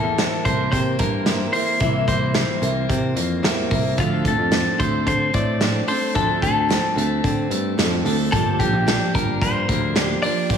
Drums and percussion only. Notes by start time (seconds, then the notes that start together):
0.18 snare, closed hi-hat
0.45 kick, closed hi-hat
0.72 kick, closed hi-hat
0.99 kick, closed hi-hat
1.26 snare, closed hi-hat
1.53 open hi-hat
1.80 kick, closed hi-hat
2.08 kick, closed hi-hat
2.34 snare, closed hi-hat
2.63 closed hi-hat
2.90 kick, closed hi-hat
3.17 closed hi-hat
3.44 snare, closed hi-hat
3.71 kick, open hi-hat
3.98 kick, closed hi-hat
4.25 kick, closed hi-hat
4.52 snare, closed hi-hat
4.80 kick, closed hi-hat
5.07 kick, closed hi-hat
5.34 kick, closed hi-hat
5.61 snare, closed hi-hat
5.88 open hi-hat
6.15 kick, closed hi-hat
6.42 kick, closed hi-hat
6.70 snare, closed hi-hat
6.98 closed hi-hat
7.24 kick, closed hi-hat
7.51 closed hi-hat
7.79 snare, closed hi-hat
8.06 open hi-hat
8.33 kick, closed hi-hat
8.60 kick, closed hi-hat
8.88 snare, closed hi-hat
9.15 kick, closed hi-hat
9.42 kick, closed hi-hat
9.69 kick, closed hi-hat
9.96 snare, closed hi-hat
10.23 open hi-hat
10.50 kick, closed hi-hat